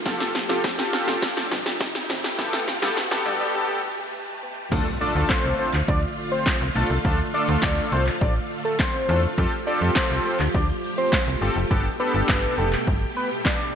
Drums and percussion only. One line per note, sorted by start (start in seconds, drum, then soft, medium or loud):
0.06 kick loud
0.06 snare loud
0.06 closed hi-hat medium
0.06 shaker medium
0.20 snare loud
0.20 shaker medium
0.35 snare loud
0.35 open hi-hat medium
0.35 shaker soft
0.50 snare loud
0.50 shaker medium
0.64 kick loud
0.64 snare loud
0.64 closed hi-hat medium
0.64 tambourine medium
0.64 shaker medium
0.79 snare loud
0.79 shaker medium
0.93 snare loud
0.93 open hi-hat medium
0.93 shaker medium
1.08 snare loud
1.08 shaker medium
1.22 kick loud
1.22 snare loud
1.22 closed hi-hat medium
1.22 shaker medium
1.37 snare loud
1.37 shaker medium
1.51 snare loud
1.51 open hi-hat medium
1.51 shaker medium
1.66 snare loud
1.66 shaker medium
1.80 kick loud
1.80 snare loud
1.80 closed hi-hat medium
1.80 tambourine loud
1.80 shaker medium
1.95 snare loud
1.95 shaker medium
2.10 snare loud
2.10 open hi-hat medium
2.10 shaker medium
2.24 snare loud
2.24 shaker medium
2.39 kick loud
2.39 snare loud
2.39 closed hi-hat medium
2.39 shaker medium
2.53 snare loud
2.53 shaker medium
2.68 snare loud
2.68 open hi-hat medium
2.68 shaker soft
2.82 snare loud
2.82 shaker medium
2.97 snare loud
2.97 closed hi-hat medium
2.97 tambourine medium
2.97 shaker medium
3.11 snare loud
3.11 shaker medium
3.26 open hi-hat medium
3.26 shaker medium
3.41 shaker medium
4.72 kick loud
4.72 closed hi-hat medium
4.72 crash loud
4.72 shaker medium
4.87 closed hi-hat medium
4.87 shaker medium
5.01 open hi-hat medium
5.01 shaker medium
5.16 closed hi-hat medium
5.16 shaker medium
5.29 kick loud
5.29 snare loud
5.29 clap loud
5.29 closed hi-hat medium
5.29 tambourine medium
5.29 shaker medium
5.45 closed hi-hat medium
5.45 shaker medium
5.59 open hi-hat medium
5.59 shaker medium
5.74 clap medium
5.74 closed hi-hat medium
5.74 shaker medium
5.88 kick loud
5.88 closed hi-hat medium
5.88 shaker medium
6.03 closed hi-hat medium
6.03 shaker medium
6.17 open hi-hat medium
6.17 shaker medium
6.32 closed hi-hat medium
6.32 shaker medium
6.46 kick loud
6.46 snare medium
6.46 clap loud
6.46 closed hi-hat medium
6.46 tambourine loud
6.46 shaker medium
6.61 closed hi-hat medium
6.61 shaker medium
6.76 open hi-hat medium
6.76 shaker medium
6.90 closed hi-hat medium
6.90 shaker medium
7.05 kick loud
7.05 closed hi-hat medium
7.05 shaker medium
7.20 closed hi-hat medium
7.20 shaker medium
7.34 open hi-hat medium
7.34 shaker soft
7.49 closed hi-hat medium
7.49 shaker medium
7.62 kick loud
7.62 snare loud
7.62 clap loud
7.62 closed hi-hat medium
7.62 tambourine medium
7.62 shaker medium
7.78 closed hi-hat medium
7.78 shaker medium
7.92 open hi-hat medium
7.92 shaker medium
8.07 clap medium
8.07 closed hi-hat medium
8.07 shaker medium
8.21 kick loud
8.21 closed hi-hat medium
8.21 shaker medium
8.36 closed hi-hat medium
8.36 shaker medium
8.51 open hi-hat medium
8.51 shaker medium
8.65 closed hi-hat medium
8.65 shaker medium
8.79 kick loud
8.79 snare medium
8.79 clap loud
8.79 closed hi-hat medium
8.79 tambourine medium
8.79 shaker medium
8.94 closed hi-hat medium
8.94 shaker medium
9.09 open hi-hat medium
9.09 shaker medium
9.23 closed hi-hat medium
9.23 shaker medium
9.38 kick loud
9.38 closed hi-hat medium
9.38 shaker medium
9.53 closed hi-hat medium
9.53 shaker medium
9.67 open hi-hat medium
9.67 shaker medium
9.82 closed hi-hat medium
9.82 shaker medium
9.95 kick loud
9.95 snare loud
9.95 clap loud
9.95 closed hi-hat medium
9.95 tambourine medium
9.95 shaker medium
10.11 closed hi-hat medium
10.11 shaker medium
10.25 open hi-hat medium
10.25 shaker medium
10.40 clap medium
10.40 closed hi-hat medium
10.40 shaker medium
10.54 kick loud
10.54 closed hi-hat medium
10.54 shaker medium
10.69 closed hi-hat medium
10.69 shaker medium
10.84 open hi-hat medium
10.84 shaker medium
10.98 closed hi-hat medium
10.98 shaker medium
11.12 kick loud
11.12 snare medium
11.12 clap loud
11.12 closed hi-hat medium
11.12 tambourine loud
11.12 shaker medium
11.27 closed hi-hat medium
11.27 shaker medium
11.42 open hi-hat medium
11.42 shaker medium
11.56 closed hi-hat medium
11.56 shaker medium
11.71 kick loud
11.71 closed hi-hat medium
11.71 shaker medium
11.86 closed hi-hat medium
11.86 shaker medium
12.00 open hi-hat medium
12.00 shaker medium
12.15 closed hi-hat soft
12.15 shaker medium
12.28 kick loud
12.28 snare loud
12.28 clap loud
12.28 closed hi-hat medium
12.28 tambourine medium
12.28 shaker medium
12.44 closed hi-hat medium
12.44 shaker medium
12.58 open hi-hat medium
12.58 shaker medium
12.73 clap medium
12.73 closed hi-hat medium
12.73 shaker medium
12.87 kick loud
12.87 closed hi-hat medium
12.87 shaker medium
13.02 closed hi-hat medium
13.02 shaker medium
13.16 open hi-hat medium
13.16 shaker soft
13.31 closed hi-hat medium
13.31 shaker medium
13.45 kick loud
13.45 snare medium
13.45 clap loud
13.45 closed hi-hat medium
13.45 tambourine loud
13.45 shaker medium
13.60 closed hi-hat medium
13.60 shaker medium